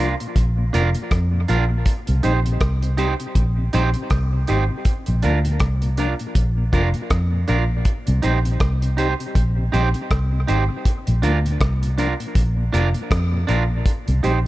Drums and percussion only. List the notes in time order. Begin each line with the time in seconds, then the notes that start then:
0.20 closed hi-hat
0.36 kick, closed hi-hat
0.74 closed hi-hat
0.95 closed hi-hat
1.11 kick, cross-stick, closed hi-hat
1.48 closed hi-hat
1.86 kick, closed hi-hat
2.07 closed hi-hat
2.23 closed hi-hat
2.46 closed hi-hat
2.60 kick, cross-stick, closed hi-hat
2.82 closed hi-hat
2.98 closed hi-hat
3.20 closed hi-hat
3.35 kick, closed hi-hat
3.73 closed hi-hat
3.94 closed hi-hat
4.10 kick, cross-stick, closed hi-hat
4.47 closed hi-hat
4.85 kick, closed hi-hat
5.06 closed hi-hat
5.22 closed hi-hat
5.45 closed hi-hat
5.60 kick, cross-stick, closed hi-hat
5.82 closed hi-hat
5.97 closed hi-hat
6.19 closed hi-hat
6.35 kick, closed hi-hat
6.73 kick, closed hi-hat
6.94 closed hi-hat
7.10 kick, cross-stick, closed hi-hat
7.48 closed hi-hat
7.85 kick, closed hi-hat
8.07 closed hi-hat
8.23 closed hi-hat
8.45 closed hi-hat
8.60 kick, cross-stick, closed hi-hat
8.82 closed hi-hat
8.98 closed hi-hat
9.20 closed hi-hat
9.35 kick, closed hi-hat
9.74 closed hi-hat
9.94 closed hi-hat
10.11 kick, cross-stick, closed hi-hat
10.48 closed hi-hat
10.85 kick, closed hi-hat
11.07 closed hi-hat
11.23 closed hi-hat
11.46 closed hi-hat
11.60 kick, cross-stick, closed hi-hat
11.83 closed hi-hat
11.98 closed hi-hat
12.20 closed hi-hat
12.35 kick, closed hi-hat
12.74 closed hi-hat
12.94 closed hi-hat
13.11 kick, cross-stick, closed hi-hat
13.48 closed hi-hat
13.86 kick, closed hi-hat
14.08 closed hi-hat
14.24 closed hi-hat